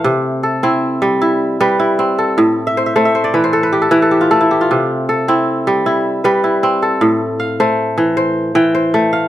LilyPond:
<<
  \new Staff \with { instrumentName = "Kora" } { \time 12/8 \key c \major \tempo 4. = 104 f''8 r8 a'8 e'4. e'4 b'8 e'4 a'8~ | a'8 r16 e''16 c''16 e''16 c''16 e''16 c''16 d''16 b'16 c''16 a'16 b'16 g'16 a'16 b'16 a'16 g'16 f'16 a'16 e'16 g'16 f'16~ | f'16 r8. a'8 e'4. e'4 b'8 e'4 a'8~ | a'8 r8 f''8 c''4. c''4 g''8 c''4 f''8 | }
  \new Staff \with { instrumentName = "Kora" } { \clef bass \time 12/8 \key c \major c4 r8 c'4 g4 r8 g4 c'4 | a,4 r8 a4 e4 r8 e4 a4 | c4 r8 c'4 g4 r8 g4 c'4 | a,4 r8 a4 e4 r8 e4 a4 | }
>>